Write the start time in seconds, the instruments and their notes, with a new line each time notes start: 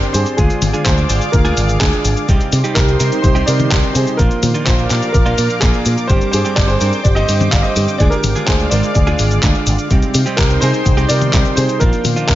Already playing: clean electric guitar G2 G3 C4 D4 G4, analog synth pad G4 C5 D5 C6, grand piano A#4 D5
0.02 closed hi-hat, cabasa
0.13 picked electric bass G2, grand piano G#4 C5, open hi-hat, cabasa
0.26 closed hi-hat, cabasa
0.37 picked electric bass D2, clean electric guitar D3 G#3 D4 F4 G#4, grand piano F4 G#4, analog synth pad G#4 D5 F5 D6, kick, closed hi-hat, cabasa
0.50 closed hi-hat, cabasa
0.62 picked electric bass G#1, open hi-hat, high tom, cabasa
0.73 clean electric guitar D3 G#3 D4 F4 G#4, closed hi-hat, cabasa
0.84 picked electric bass D2, grand piano G#4 C5, kick, clap, closed hi-hat, cabasa
0.98 closed hi-hat, cabasa
1.09 picked electric bass G#1, clean electric guitar D3 G#3 D4 F4 C5, open hi-hat, cabasa
1.22 closed hi-hat, cabasa
1.32 picked electric bass D2, grand piano F4 A#4, kick, closed hi-hat, cabasa
1.45 clean electric guitar D3 G#3 D4 F4 G#4, closed hi-hat, cabasa
1.57 picked electric bass G#1, open hi-hat, cabasa
1.69 closed hi-hat, cabasa
1.80 picked electric bass D2, clean electric guitar D3 G#3 D4 F4 G#4, grand piano F4 G#4, kick, clap, closed hi-hat, cabasa
1.93 closed hi-hat, cabasa
2.05 picked electric bass G#1, open hi-hat, cabasa
2.17 closed hi-hat, cabasa
2.28 picked electric bass C2, clean electric guitar C3 G3 C4 D#4 G4, analog synth pad D#4 G4 C5 C6, kick, closed hi-hat, cabasa
2.41 closed hi-hat, cabasa
2.52 picked electric bass C3, open hi-hat, cabasa
2.64 clean electric guitar C3 G3 C4 D#4 G4, closed hi-hat, cabasa
2.75 picked electric bass C2, grand piano G4 A#4, kick, clap, closed hi-hat, cabasa
2.88 closed hi-hat, cabasa
3.00 picked electric bass C3, clean electric guitar C3 G3 C4 D#4 A#4, open hi-hat, cabasa
3.12 closed hi-hat, cabasa
3.22 picked electric bass C2, grand piano G4 C5, kick, closed hi-hat, cabasa
3.35 clean electric guitar C3 G3 C4 D#4 G4, closed hi-hat, cabasa
3.46 picked electric bass C3, grand piano A#4 D5, open hi-hat, cabasa
3.60 closed hi-hat, high tom, cabasa
3.71 picked electric bass C2, clean electric guitar C3 G3 C4 D#4 G4, kick, clap, closed hi-hat, cabasa
3.83 closed hi-hat, cabasa
3.94 picked electric bass C3, grand piano G#4 C5, open hi-hat, cabasa
4.07 closed hi-hat, cabasa
4.17 picked electric bass A#1, clean electric guitar A#2 F3 A#3 D4 F4, grand piano F4 A#4, analog synth pad A#4 D5 F5 D6, kick, closed hi-hat, cabasa
4.31 closed hi-hat, cabasa
4.43 picked electric bass A#2, open hi-hat, high tom, cabasa
4.54 clean electric guitar A#2 F3 A#3 D4 F4, closed hi-hat, cabasa
4.65 picked electric bass A#1, grand piano F4 C5, kick, clap, closed hi-hat, cabasa
4.79 closed hi-hat, cabasa
4.90 picked electric bass A#2, clean electric guitar A#2 F3 A#3 D4 G4, clap, open hi-hat, cabasa
5.03 closed hi-hat, cabasa
5.13 picked electric bass A#1, grand piano F4 A#4, kick, closed hi-hat, cabasa
5.26 clean electric guitar A#2 F3 A#3 D4 F4, closed hi-hat, cabasa
5.38 picked electric bass A#2, open hi-hat, cabasa
5.50 closed hi-hat, cabasa
5.60 picked electric bass A#1, clean electric guitar A#2 F3 A#3 D4 F4, grand piano F4 G#4, kick, clap, closed hi-hat, cabasa
5.74 closed hi-hat, cabasa
5.86 picked electric bass A#2, open hi-hat, cabasa
5.98 closed hi-hat, cabasa
6.07 picked electric bass G1, clean electric guitar G2 G3 C4 D4 G4, grand piano G4 C5, analog synth pad C5 G5, kick, closed hi-hat, cabasa
6.21 closed hi-hat, cabasa
6.31 picked electric bass G2, grand piano G#4 C5, open hi-hat, cabasa
6.45 clean electric guitar G2 G3 C4 D4 G4, closed hi-hat, cabasa
6.55 picked electric bass G1, grand piano G4 D5, kick, clap, closed hi-hat, cabasa
6.67 grand piano G#4 C5, closed hi-hat, cabasa
6.81 picked electric bass G2, clean electric guitar G2 G3 C4 D4 A#4, open hi-hat, cabasa
6.93 closed hi-hat, cabasa
7.03 picked electric bass G1, grand piano G4 D5, kick, closed hi-hat, cabasa
7.15 clean electric guitar G2 D3 G3 C4 G4, grand piano C5 D#5, closed hi-hat, cabasa
7.29 picked electric bass G2, open hi-hat, cabasa
7.41 closed hi-hat, high tom, cabasa
7.51 picked electric bass G1, clean electric guitar G2 D3 G3 C4 G4, grand piano D5 F5, kick, clap, closed hi-hat, cabasa
7.63 grand piano C5 D#5, closed hi-hat, cabasa
7.76 picked electric bass G2, open hi-hat, cabasa
7.88 closed hi-hat, cabasa
7.98 picked electric bass D2, clean electric guitar D3 G#3 D4 F4 G#4, analog synth pad G#3 D5 F5, grand piano G#4 D5, kick, closed hi-hat, cabasa
8.10 grand piano G4 A#4, closed hi-hat, cabasa
8.24 picked electric bass G#1, open hi-hat, high tom, cabasa
8.35 clean electric guitar D3 G#3 D4 F4 G#4, closed hi-hat, cabasa
8.46 picked electric bass D2, grand piano G#4 C5, kick, clap, closed hi-hat, cabasa
8.60 closed hi-hat, cabasa
8.70 picked electric bass G#1, clean electric guitar D3 G#3 D4 F4 C5, grand piano A#4 D5, open hi-hat, cabasa
8.83 closed hi-hat, cabasa
8.94 picked electric bass D2, grand piano G#4 D5, kick, closed hi-hat, cabasa
9.07 clean electric guitar D3 G#3 D4 F4 G#4, closed hi-hat, cabasa
9.19 picked electric bass G#1, open hi-hat, cabasa
9.31 closed hi-hat, cabasa
9.43 picked electric bass D2, clean electric guitar D3 G#3 D4 F4 G#4, kick, clap, closed hi-hat, cabasa
9.55 closed hi-hat, cabasa
9.67 picked electric bass G#1, open hi-hat, cabasa
9.79 closed hi-hat, cabasa
9.90 picked electric bass C2, clean electric guitar C3 G3 C4 D#4 G4, analog synth pad D#4 C5 G5 C6, kick, closed hi-hat, cabasa
10.03 closed hi-hat, cabasa
10.14 picked electric bass C3, open hi-hat, cabasa
10.26 clean electric guitar C3 G3 C4 D#4 G4, closed hi-hat, cabasa
10.37 picked electric bass C2, grand piano G4 A#4, kick, clap, closed hi-hat, cabasa
10.50 closed hi-hat, cabasa
10.60 picked electric bass C3, clean electric guitar C3 G3 C4 D#4 A#4, grand piano G#4 C5, open hi-hat, cabasa
10.74 closed hi-hat, cabasa
10.86 picked electric bass C2, kick, closed hi-hat, cabasa
10.97 clean electric guitar C3 G3 C4 D#4 G4, closed hi-hat, cabasa
11.09 picked electric bass C3, grand piano A#4 D5, open hi-hat, cabasa
11.21 closed hi-hat, high tom, cabasa
11.33 picked electric bass C2, clean electric guitar C3 G3 C4 D#4 G4, kick, clap, closed hi-hat, cabasa
11.45 closed hi-hat, cabasa
11.56 picked electric bass C3, grand piano G#4 C5, open hi-hat, cabasa
11.69 closed hi-hat, cabasa
11.80 picked electric bass A#1, clean electric guitar A#2 F3 A#3 D4 F4, grand piano F4 A#4, analog synth pad A#4 D5 F5 D6, kick, closed hi-hat, cabasa
11.93 closed hi-hat, cabasa
12.05 picked electric bass A#2, open hi-hat, high tom, cabasa
12.16 clean electric guitar A#2 F3 A#3 D4 F4, closed hi-hat, cabasa
12.27 picked electric bass A#1, grand piano F4 A#4, kick, clap, closed hi-hat, cabasa